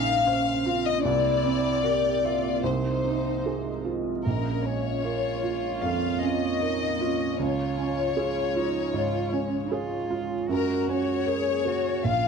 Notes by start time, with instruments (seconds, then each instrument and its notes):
Already playing: felt piano A#1 C#4, ambient pad C#3 A#3 C5, cello D#4, violin section F5
0.26 cello C#4, felt piano C5
0.66 cello C4, felt piano F4
0.86 violin section D#5
1.03 felt piano C2, cello E4, violin section D5
1.07 ambient pad E5
1.45 felt piano C4
1.83 cello G4, felt piano A#4
2.24 cello F4, felt piano E5
2.63 felt piano C2, ambient pad G#3 F4 D#5, cello D#4, violin section C5
3.04 felt piano D#4
3.46 felt piano G#4
3.85 felt piano F4
4.25 felt piano A#1, ambient pad A#3 C#5, cello C#4, violin section A#4
4.65 felt piano C#4, violin section C#5
5.04 cello F4, felt piano A#4
5.43 felt piano F4
5.82 felt piano F2, violin section F5
6.21 felt piano C#4, violin section D#5
6.61 cello D#4, felt piano A#4
7.01 cello C#4, felt piano F4
7.37 felt piano C#2, ambient pad G#3 F4, cello F4, violin section C#5
7.78 felt piano C#4
8.17 cello F4, felt piano G#4
8.56 cello D#4, felt piano F4
8.94 felt piano G#2, cello F4
9.33 felt piano C#4, cello C#4
9.72 cello F4, felt piano G#4
10.10 felt piano F4
10.49 felt piano F#2, ambient pad A#3 C#4 G#4, cello F#4, violin section A#4
10.88 felt piano C#4, violin section C#5
11.26 cello G#4, felt piano A#4
11.65 cello F#4, felt piano G#4
12.04 felt piano A#1, cello F4, ambient pad F4, violin section F5